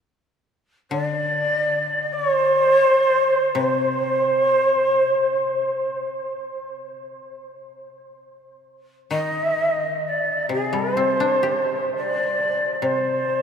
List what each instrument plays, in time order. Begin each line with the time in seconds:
0.91 koto D3, shakuhachi D5
2.13 shakuhachi C#5
2.32 shakuhachi C5
3.55 koto C3, shakuhachi C5
9.11 koto D#3, shakuhachi D#5
10.08 shakuhachi D5
10.49 koto C3, shakuhachi G#4
10.73 koto G3
10.97 koto C4, shakuhachi C5
11.20 koto D4
11.43 koto G4
11.96 shakuhachi D5
12.82 koto C3, shakuhachi C5